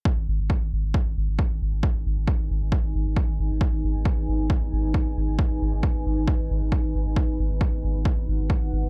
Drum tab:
BD |o-o-o-o-|o-o-o-o-|o-o-o-o-|o-o-o-o-|

BD |o-o-o-o-|